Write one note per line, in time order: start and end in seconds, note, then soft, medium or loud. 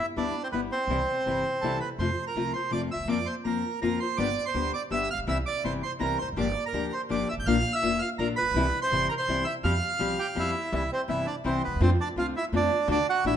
0.16 0.32 D2 medium
0.16 0.34 G3 medium
0.16 0.34 B3 medium
0.16 0.43 D4 medium
0.16 0.34 E4 medium
0.16 0.43 D5 medium
0.43 0.48 C4 medium
0.43 0.48 C5 medium
0.52 0.68 G1 medium
0.52 0.70 G3 medium
0.52 0.61 B3 medium
0.52 0.71 B3 medium
0.52 0.71 E4 medium
0.52 0.61 B4 medium
0.72 1.77 C4 medium
0.72 1.77 C5 medium
0.88 1.04 C2 loud
0.88 0.99 C3 medium
0.88 0.99 E3 medium
0.88 0.99 G3 medium
0.88 0.99 C4 medium
0.88 0.99 E4 medium
1.26 1.42 G1 medium
1.26 1.43 C3 medium
1.26 1.44 E3 medium
1.26 1.44 G3 medium
1.26 1.44 C4 medium
1.26 1.44 E4 medium
1.61 1.78 C2 medium
1.61 1.80 C3 medium
1.61 1.80 E3 medium
1.61 1.80 G3 medium
1.61 1.81 C4 medium
1.61 1.81 E4 medium
1.61 1.79 A4 medium
1.61 1.79 A5 medium
1.80 1.89 B4 medium
1.80 1.89 B5 medium
1.98 2.14 F2 medium
1.98 2.09 C3 medium
1.98 2.09 F3 medium
1.98 2.09 A3 medium
1.98 2.09 C4 medium
1.98 2.09 F4 medium
1.98 2.25 C5 medium
1.98 2.25 C6 medium
2.27 2.53 A#4 medium
2.27 2.52 A#5 medium
2.36 2.51 C2 medium
2.36 2.53 C3 medium
2.36 2.53 F3 medium
2.36 2.53 A3 medium
2.36 2.53 C4 medium
2.36 2.54 F4 medium
2.53 2.72 C5 medium
2.53 2.71 C6 medium
2.71 2.88 F2 medium
2.71 2.89 C3 medium
2.71 2.89 F3 medium
2.71 2.89 A3 medium
2.71 2.89 C4 medium
2.71 2.90 F4 medium
2.71 2.82 D5 medium
2.71 2.81 D6 medium
2.91 3.09 E5 medium
2.91 3.08 E6 medium
2.95 2.99 D2 soft
3.00 3.05 D#2 medium
3.05 3.08 E2 medium
3.05 3.24 F2 medium
3.05 3.17 F3 medium
3.05 3.17 A#3 medium
3.05 3.17 C4 medium
3.05 3.18 F4 medium
3.09 3.27 D5 medium
3.09 3.28 D6 medium
3.26 3.35 C5 medium
3.26 3.34 C6 medium
3.44 3.61 F2 medium
3.44 3.62 F3 medium
3.44 3.62 A#3 medium
3.44 3.63 C4 medium
3.44 3.63 F4 medium
3.44 3.80 A#4 medium
3.44 3.80 A#5 medium
3.82 3.98 F2 medium
3.82 3.99 F3 medium
3.82 3.99 A#3 medium
3.82 3.99 C4 medium
3.82 3.99 F4 medium
3.82 4.00 A#4 medium
3.82 3.99 A#5 medium
4.00 4.18 C5 medium
4.00 4.17 C6 medium
4.17 4.34 G1 loud
4.17 4.27 D3 medium
4.17 4.27 G3 medium
4.17 4.28 B3 loud
4.17 4.27 G4 medium
4.17 4.44 D5 medium
4.17 4.46 D6 loud
4.46 4.72 C5 medium
4.46 4.71 C6 loud
4.54 4.70 D2 medium
4.54 4.71 D3 medium
4.54 4.72 G3 medium
4.54 4.72 B3 medium
4.54 4.72 G4 medium
4.73 4.83 D5 medium
4.73 4.82 D6 medium
4.90 5.06 G1 medium
4.90 5.08 D3 medium
4.90 5.08 G3 medium
4.90 5.09 B3 medium
4.90 5.08 G4 medium
4.90 5.09 E5 medium
4.90 5.08 E6 loud
5.11 5.18 A1 medium
5.11 5.20 F5 medium
5.11 5.19 F6 loud
5.18 5.23 A#1 medium
5.24 5.27 B1 medium
5.24 5.37 C3 medium
5.24 5.36 E3 medium
5.28 5.43 C2 loud
5.28 5.37 G3 medium
5.28 5.37 C4 medium
5.28 5.37 E4 medium
5.28 5.38 E5 medium
5.28 5.37 E6 loud
5.46 5.64 D5 medium
5.46 5.63 D6 loud
5.64 5.80 G1 medium
5.64 5.81 C3 medium
5.64 5.81 E3 medium
5.64 5.81 G3 medium
5.64 5.81 C4 medium
5.64 5.82 E4 medium
5.64 5.74 C5 medium
5.64 5.73 C6 medium
5.83 5.93 C5 medium
5.83 5.91 C6 medium
5.99 6.16 C2 medium
5.99 6.17 C3 medium
5.99 6.17 E3 medium
5.99 6.17 G3 medium
5.99 6.18 C4 medium
5.99 6.17 E4 medium
5.99 6.19 A#4 medium
5.99 6.17 A#5 medium
6.19 6.29 C5 medium
6.19 6.27 C6 medium
6.23 6.27 E1 soft
6.28 6.32 F1 medium
6.33 6.36 F#1 medium
6.33 6.46 D3 medium
6.37 6.53 G1 medium
6.37 6.46 F3 medium
6.37 6.46 A#3 medium
6.37 6.46 D4 medium
6.37 6.46 G4 medium
6.37 6.64 D5 medium
6.37 6.63 D6 medium
6.66 6.92 A#4 medium
6.66 6.94 A#5 medium
6.72 6.89 D2 medium
6.72 6.90 D3 medium
6.72 6.91 F3 medium
6.72 6.91 A#3 medium
6.72 6.91 D4 medium
6.72 6.91 G4 medium
6.93 7.02 C5 medium
6.93 7.01 C6 medium
7.09 7.26 G1 medium
7.09 7.27 D3 medium
7.09 7.27 F3 medium
7.09 7.27 A#3 medium
7.09 7.27 D4 medium
7.09 7.28 G4 medium
7.09 7.29 D5 medium
7.09 7.28 D6 medium
7.29 7.37 G1 medium
7.29 7.35 E5 medium
7.29 7.34 E6 medium
7.38 7.41 G#1 medium
7.38 7.46 A1 medium
7.38 7.47 G6 medium
7.46 7.62 A#1 loud
7.46 7.56 D3 medium
7.46 7.56 A#3 medium
7.46 7.56 D4 medium
7.46 7.56 F4 loud
7.46 7.73 F5 medium
7.46 7.75 F6 loud
7.73 8.00 E5 medium
7.73 8.02 E6 loud
7.82 7.98 F1 medium
7.82 7.99 D3 medium
7.82 8.00 A#3 medium
7.82 8.00 D4 medium
7.82 8.00 F4 medium
7.99 8.10 F5 medium
7.99 8.08 F6 loud
8.18 8.34 A#1 medium
8.18 8.36 D3 medium
8.18 8.36 A#3 medium
8.18 8.37 D4 medium
8.18 8.36 F4 medium
8.18 8.28 A#4 medium
8.18 8.27 A#5 medium
8.36 8.80 B4 medium
8.36 8.79 B5 loud
8.42 8.45 A1 medium
8.46 8.50 A#1 medium
8.51 8.54 B1 medium
8.51 8.70 C2 loud
8.51 8.64 C3 medium
8.56 8.65 E3 medium
8.56 8.65 G3 medium
8.56 8.65 C4 loud
8.56 8.65 E4 medium
8.82 9.08 C5 medium
8.82 9.07 C6 loud
8.91 9.07 G1 medium
8.91 9.09 C3 medium
8.91 9.09 E3 medium
8.91 9.09 G3 medium
8.91 9.09 C4 medium
8.91 9.09 E4 medium
9.09 9.15 A#4 medium
9.09 9.13 A#5 medium
9.18 9.44 C5 medium
9.18 9.46 C6 loud
9.28 9.43 C2 medium
9.28 9.45 C3 medium
9.28 9.45 E3 medium
9.28 9.45 G3 medium
9.28 9.46 C4 medium
9.28 9.45 E4 medium
9.45 9.55 E5 medium
9.45 9.53 E6 loud
9.63 9.79 F2 loud
9.63 9.73 F3 medium
9.63 9.73 G3 loud
9.63 9.73 C4 medium
9.63 9.74 G4 loud
9.63 10.51 F5 medium
9.63 10.51 F6 loud
9.99 10.16 C2 medium
9.99 10.17 F3 medium
9.99 10.17 G3 medium
9.99 10.17 C4 medium
9.99 10.17 G4 medium
10.19 10.27 G4 medium
10.19 10.29 G5 medium
10.35 10.52 F2 medium
10.35 10.53 F3 medium
10.35 10.53 G3 medium
10.35 10.54 C4 medium
10.35 10.53 G4 medium
10.39 10.72 E4 medium
10.39 10.74 E5 loud
10.72 10.88 C2 loud
10.72 10.81 C3 medium
10.72 10.82 E3 medium
10.72 10.82 G3 medium
10.72 10.82 C4 medium
10.72 10.82 E4 loud
10.72 10.90 E4 medium
10.72 10.91 E5 medium
10.92 11.00 C4 medium
10.92 11.02 C5 medium
11.08 11.24 G1 medium
11.08 11.26 C3 medium
11.08 11.25 E3 medium
11.08 11.26 G3 medium
11.08 11.26 C4 medium
11.08 11.26 E4 medium
11.08 11.26 E5 medium
11.26 11.34 D4 medium
11.26 11.35 D5 medium
11.44 11.60 C2 medium
11.44 11.61 C3 medium
11.44 11.62 E3 medium
11.44 11.62 G3 medium
11.44 11.62 C4 medium
11.44 11.62 E4 medium
11.44 11.63 C5 medium
11.64 11.71 D2 medium
11.64 11.80 B3 medium
11.64 11.81 B4 medium
11.71 11.75 D#2 medium
11.76 11.80 E2 medium
11.81 11.96 F2 loud
11.81 11.90 D3 medium
11.81 11.90 A3 medium
11.81 11.90 C4 loud
11.81 11.90 C4 medium
11.81 11.90 F4 loud
11.81 11.91 C5 medium
12.01 12.08 D4 medium
12.01 12.09 D5 medium
12.16 12.32 C2 medium
12.16 12.33 D3 medium
12.16 12.34 A3 medium
12.16 12.34 C4 medium
12.16 12.34 F4 medium
12.16 12.26 F4 medium
12.16 12.27 F5 medium
12.36 12.44 E4 medium
12.36 12.45 E5 loud
12.52 12.68 F2 medium
12.52 12.70 D3 medium
12.52 12.69 A3 medium
12.52 12.70 C4 medium
12.52 12.88 D4 medium
12.52 12.70 F4 medium
12.57 12.88 D5 medium
12.88 13.03 D2 loud
12.88 12.97 D3 medium
12.88 12.97 A3 medium
12.88 12.97 D4 loud
12.88 13.06 D4 medium
12.88 12.98 F#4 medium
12.92 13.07 D5 loud
13.10 13.25 F#4 medium
13.10 13.25 F#5 loud
13.24 13.37 A1 medium
13.24 13.37 D3 medium
13.24 13.37 A3 medium
13.24 13.37 D4 medium
13.24 13.34 E4 medium
13.24 13.37 F#4 medium
13.24 13.35 E5 loud